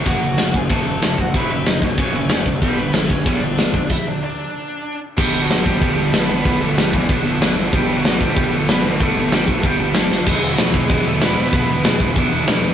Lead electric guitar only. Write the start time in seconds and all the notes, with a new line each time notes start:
0.07 F#4 F#5
0.55 G#4 G#5
0.71 A4 A5
1.20 F#4 F#5
1.36 E4 E5
1.52 E4 E5
1.68 D#4 D#5
1.83 C#4 C#5
2.63 B3 B4
3.11 C#4 C#5
3.27 D4 D5
3.91 E4 E5
4.07 D4 D5
4.23 D4 D5
5.18 G3 G4
5.43 F#3 F#4
5.65 G3 G4
6.14 B3 B4
6.30 B3 B4
6.61 A3 A4
6.77 G3 G4
6.93 E3 E4
7.09 D4 D5
7.74 G3 G4
7.98 F#3 F#4
8.21 G3 G4
8.54 A3 A4
8.71 B3 B4
8.86 A3 A4
9.33 G3 G4
9.49 A3 A4
9.65 G3 G4
10.28 G#3 G#4
10.52 F#3 F#4
10.76 G#3 G#4
11.08 A3 A4
11.23 B3 B4
11.38 B3 B4
11.85 G#3 G#4
12.01 E3 E4
12.17 D4 D5